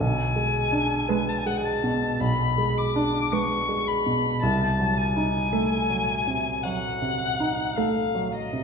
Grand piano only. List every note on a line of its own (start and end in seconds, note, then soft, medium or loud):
0.01 2.17 B1 medium
0.36 0.94 G#3 soft
0.72 1.31 D4 soft
1.09 1.68 B4 soft
1.46 2.06 G#3 soft
1.84 2.43 B2 soft
2.21 4.38 B1 soft
2.58 3.17 G#3 soft
2.96 3.55 D4 soft
3.33 3.91 B4 soft
3.69 4.27 G#3 soft
4.06 4.43 B2 soft
4.43 6.60 C2 medium
4.79 5.38 F#3 soft
5.16 5.74 D#4 soft
5.53 6.11 A4 soft
5.90 6.49 F#3 soft
6.27 6.87 C3 soft
6.65 7.25 F#3 soft
7.02 7.62 C3 soft
7.40 8.00 D#4 soft
7.78 8.37 A4 soft
8.15 8.64 F#3 soft
8.53 8.64 C3 soft